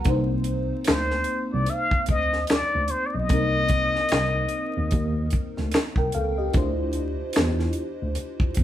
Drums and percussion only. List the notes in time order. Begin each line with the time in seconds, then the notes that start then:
0.05 kick, closed hi-hat
0.44 closed hi-hat
0.84 finger snap, snare, closed hi-hat
1.11 snare
1.24 closed hi-hat
1.66 closed hi-hat
1.91 kick
2.06 kick, closed hi-hat
2.33 snare
2.47 finger snap, snare, closed hi-hat
2.88 closed hi-hat
3.29 kick, closed hi-hat
3.69 kick, closed hi-hat
3.95 snare
4.09 finger snap, snare, closed hi-hat
4.49 closed hi-hat
4.91 kick, closed hi-hat
5.30 kick, closed hi-hat
5.57 snare
5.71 finger snap, snare, closed hi-hat
5.96 kick
6.12 closed hi-hat
6.54 kick, closed hi-hat
6.93 closed hi-hat
7.33 finger snap, snare, closed hi-hat
7.59 snare
7.73 closed hi-hat
8.15 closed hi-hat
8.40 kick
8.55 kick, closed hi-hat